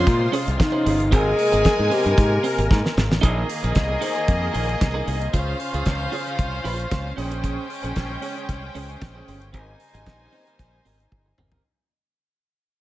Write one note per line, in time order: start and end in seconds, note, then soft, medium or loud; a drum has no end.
0.00 3.19 C3 medium
0.00 1.10 G#3 medium
0.00 0.34 F4 loud
0.00 1.08 F4 medium
0.00 0.82 C5 loud
0.00 0.82 C6 loud
0.07 0.26 A#2 loud
0.07 kick loud
0.07 snare soft
0.07 closed hi-hat medium
0.20 muted clean electric guitar stroke medium
0.32 0.46 C#4 medium
0.32 0.46 G#4 medium
0.32 0.45 C5 medium
0.32 open hi-hat medium
0.46 0.56 C2 medium
0.46 muted clean electric guitar stroke soft
0.46 closed hi-hat soft
0.58 1.15 D#4 loud
0.58 muted clean electric guitar stroke soft
0.58 kick loud
0.58 snare loud
0.58 closed hi-hat medium
0.72 0.83 C#4 medium
0.72 0.84 G#4 medium
0.72 0.85 C5 loud
0.85 1.12 G1 loud
0.85 0.96 C#4 medium
0.85 0.96 G#4 medium
0.85 0.97 C5 medium
0.85 open hi-hat medium
0.99 muted clean electric guitar stroke soft
0.99 closed hi-hat medium
1.11 1.32 G#1 loud
1.11 2.92 G#3 loud
1.11 3.21 A#3 medium
1.11 1.36 C4 medium
1.11 1.36 G4 medium
1.11 1.94 G#4 loud
1.11 3.21 A#4 loud
1.11 1.37 A#4 medium
1.11 2.92 G#5 loud
1.11 kick loud
1.11 closed hi-hat medium
1.37 muted clean electric guitar stroke soft
1.37 open hi-hat medium
1.52 1.62 G#1 loud
1.52 1.62 C4 medium
1.52 1.62 G4 medium
1.52 1.61 A#4 medium
1.52 closed hi-hat medium
1.65 muted clean electric guitar stroke soft
1.65 kick loud
1.65 snare loud
1.65 closed hi-hat medium
1.78 1.88 G#2 medium
1.78 muted clean electric guitar stroke medium
1.90 2.04 C4 medium
1.90 2.04 G4 loud
1.90 2.71 G4 loud
1.90 2.04 C5 medium
1.90 open hi-hat medium
2.05 2.14 G2 medium
2.05 2.15 C4 medium
2.05 2.15 G4 medium
2.05 2.14 A#4 medium
2.05 closed hi-hat soft
2.18 2.37 G#2 loud
2.18 kick loud
2.18 snare soft
2.18 closed hi-hat medium
2.31 muted clean electric guitar stroke soft
2.43 2.57 C4 medium
2.43 2.58 G4 medium
2.43 2.57 A#4 loud
2.43 open hi-hat medium
2.58 2.67 G#1 medium
2.58 muted clean electric guitar stroke medium
2.58 closed hi-hat soft
2.70 2.81 G#2 loud
2.70 muted clean electric guitar stroke soft
2.70 kick loud
2.70 snare medium
2.84 muted clean electric guitar stroke medium
2.84 snare medium
2.97 3.07 G#1 loud
2.97 snare loud
3.10 3.20 A1 loud
3.10 muted clean electric guitar stroke soft
3.10 snare medium
3.21 3.42 A#1 loud
3.21 5.31 D#3 medium
3.21 5.29 A#3 medium
3.21 5.32 A#3 medium
3.21 3.46 D#4 medium
3.21 3.47 G#4 medium
3.21 5.29 G#4 medium
3.21 5.31 G#4 medium
3.21 3.47 A#4 medium
3.21 5.29 D#5 loud
3.21 kick loud
3.21 closed hi-hat medium
3.49 muted clean electric guitar stroke soft
3.49 open hi-hat medium
3.63 3.73 A#1 medium
3.63 3.73 D#4 medium
3.63 3.73 G#4 medium
3.63 3.72 A#4 medium
3.63 closed hi-hat soft
3.75 3.95 C2 loud
3.75 muted clean electric guitar stroke soft
3.75 kick loud
3.75 snare medium
3.75 closed hi-hat soft
3.89 muted clean electric guitar stroke soft
4.01 4.15 D#4 medium
4.01 4.15 G#4 medium
4.01 4.14 C5 medium
4.01 open hi-hat medium
4.16 4.26 D#4 medium
4.16 4.25 G#4 medium
4.16 4.25 C5 medium
4.16 closed hi-hat soft
4.28 4.48 F2 medium
4.28 kick loud
4.28 closed hi-hat medium
4.42 muted clean electric guitar stroke medium
4.53 4.74 A#1 loud
4.53 4.68 D#4 medium
4.53 4.68 G#4 medium
4.53 4.66 A#4 loud
4.53 open hi-hat medium
4.68 muted clean electric guitar stroke soft
4.68 closed hi-hat soft
4.80 5.00 C2 medium
4.80 muted clean electric guitar stroke soft
4.80 kick loud
4.80 snare loud
4.80 closed hi-hat medium
4.94 5.05 D#4 medium
4.94 5.06 G#4 medium
4.94 5.06 A#4 medium
5.06 5.27 C2 loud
5.06 5.17 D#4 medium
5.06 5.18 G#4 medium
5.06 5.18 A#4 medium
5.06 open hi-hat medium
5.20 muted clean electric guitar stroke medium
5.20 closed hi-hat medium
5.33 5.53 C#2 loud
5.33 7.16 C#3 medium
5.33 7.14 C#4 medium
5.33 5.58 F4 medium
5.33 7.16 F4 medium
5.33 5.58 G#4 medium
5.33 7.14 C5 loud
5.33 7.16 C5 medium
5.33 5.58 C5 medium
5.33 7.14 F5 medium
5.33 kick loud
5.33 closed hi-hat medium
5.60 muted clean electric guitar stroke soft
5.60 open hi-hat medium
5.73 5.83 C#2 medium
5.73 5.84 F4 medium
5.73 5.83 G#4 medium
5.73 5.83 C5 medium
5.73 closed hi-hat soft
5.86 6.06 C#2 loud
5.86 muted clean electric guitar stroke soft
5.86 kick loud
5.86 snare loud
5.86 closed hi-hat medium
6.00 muted clean electric guitar stroke soft
6.12 6.26 F4 medium
6.12 6.26 G#4 medium
6.12 6.26 C#5 medium
6.12 open hi-hat medium
6.26 6.36 F4 soft
6.26 6.36 G#4 medium
6.26 6.36 C5 medium
6.26 closed hi-hat soft
6.39 6.58 C2 medium
6.39 kick loud
6.39 closed hi-hat medium
6.53 muted clean electric guitar stroke soft
6.64 6.84 A#1 loud
6.64 6.85 F4 medium
6.64 6.79 G#4 medium
6.64 6.78 C5 medium
6.64 open hi-hat medium
6.79 muted clean electric guitar stroke soft
6.79 closed hi-hat medium
6.91 7.11 C#2 medium
6.91 muted clean electric guitar stroke soft
6.91 kick loud
6.91 snare loud
6.91 closed hi-hat medium
7.04 muted clean electric guitar stroke soft
7.17 7.56 A#1 loud
7.17 11.60 C#3 medium
7.17 9.52 G#3 medium
7.17 7.31 C#4 medium
7.17 9.52 C#4 medium
7.17 9.50 C#4 medium
7.17 7.30 G#4 medium
7.17 9.50 C5 medium
7.17 7.29 C5 medium
7.17 9.50 G5 loud
7.17 open hi-hat medium
7.30 7.41 C#4 medium
7.30 7.41 G#4 medium
7.30 7.40 C5 medium
7.30 closed hi-hat medium
7.43 7.68 C#4 medium
7.43 7.68 G#4 medium
7.43 7.68 C5 medium
7.43 kick loud
7.43 closed hi-hat medium
7.69 muted clean electric guitar stroke soft
7.69 open hi-hat medium
7.83 7.93 A#1 medium
7.83 7.94 C#4 medium
7.83 7.93 G#4 medium
7.83 7.93 C5 medium
7.83 closed hi-hat soft
7.96 8.16 A#1 loud
7.96 muted clean electric guitar stroke soft
7.96 kick loud
7.96 snare medium
7.96 closed hi-hat medium
8.09 muted clean electric guitar stroke soft
8.22 8.36 C#4 medium
8.22 8.35 G#4 medium
8.22 8.34 C#5 medium
8.22 open hi-hat medium
8.36 8.46 C#4 medium
8.36 8.46 G#4 medium
8.36 8.46 C#5 medium
8.36 closed hi-hat soft
8.49 8.68 C2 medium
8.49 kick loud
8.49 snare soft
8.49 closed hi-hat medium
8.62 muted clean electric guitar stroke soft
8.75 8.95 C#2 medium
8.75 8.89 C#4 medium
8.75 8.89 G#4 medium
8.75 8.88 C5 medium
8.75 open hi-hat medium
8.89 muted clean electric guitar stroke soft
8.89 closed hi-hat soft
9.01 9.21 A#1 medium
9.01 muted clean electric guitar stroke medium
9.01 kick loud
9.01 snare loud
9.01 closed hi-hat medium
9.15 9.26 C#4 medium
9.15 9.27 G#4 medium
9.15 9.27 C5 medium
9.27 9.54 G1 medium
9.27 9.38 C#4 medium
9.27 9.39 G#4 medium
9.27 9.39 C5 medium
9.27 open hi-hat medium
9.41 muted clean electric guitar stroke soft
9.41 closed hi-hat medium
9.53 9.73 G#1 loud
9.53 11.62 G3 medium
9.53 11.62 A#3 medium
9.53 9.78 C4 medium
9.53 11.60 D#4 loud
9.53 9.78 G4 medium
9.53 9.79 A#4 medium
9.53 11.61 C5 loud
9.53 11.60 G#5 loud
9.53 kick loud
9.53 closed hi-hat medium
9.79 muted clean electric guitar stroke soft
9.79 open hi-hat medium
9.93 10.03 G#1 loud
9.93 10.04 C4 soft
9.93 10.04 G4 medium
9.93 10.03 A#4 medium
9.93 closed hi-hat medium
10.06 10.26 A#1 medium
10.06 muted clean electric guitar stroke soft
10.06 kick medium
10.06 snare medium
10.06 closed hi-hat soft
10.20 muted clean electric guitar stroke medium
10.32 10.46 C4 medium
10.32 10.46 G4 medium
10.32 10.46 C5 medium
10.32 open hi-hat medium
10.46 10.57 C4 soft
10.46 10.56 G4 medium
10.46 10.56 A#4 medium
10.46 closed hi-hat soft
10.59 10.79 A#1 medium
10.59 kick loud
10.59 snare soft
10.59 closed hi-hat medium
10.72 muted clean electric guitar stroke soft
10.85 11.05 G#1 medium
10.85 10.99 C4 medium
10.85 10.99 G4 medium
10.85 10.98 A#4 medium
10.85 open hi-hat medium
10.99 muted clean electric guitar stroke soft
10.99 closed hi-hat soft
11.12 11.31 G1 medium
11.12 muted clean electric guitar stroke soft
11.12 kick loud
11.12 high tom medium
11.26 muted clean electric guitar stroke medium
11.38 11.58 G1 loud
11.38 11.52 C4 medium
11.38 11.51 G4 loud
11.38 11.51 A#4 medium
11.38 mid tom medium
11.52 11.62 C4 soft
11.52 11.62 G4 medium
11.52 11.62 A#4 medium
11.52 floor tom loud